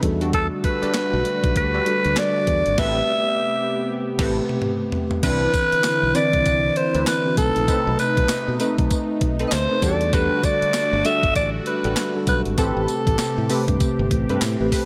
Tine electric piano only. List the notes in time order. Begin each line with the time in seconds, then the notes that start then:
0.03 G3 D4 F#4 A4
1.86 G3 D4 F#4 A4
2.78 A3 C4 G4 B4
4.19 A3 C4 G4 B4
5.23 E3 C4 D4 B4
6.15 E3 C4 D4 B4
7.26 E3 C4 D4 F#4
7.38 A3 C4 D#4 B4
8.60 A3 C4 D#4 B4
9.70 A3 C4 D#4 B4
9.83 G3 D4 F#4 G4
9.91 A4
11.05 G3 D4 F#4 A4
12.16 G3 D4 F#4 A4
12.58 A3 C4 G4 B4
13.50 A3 C4 G4 B4
14.60 A3 C4 G4 B4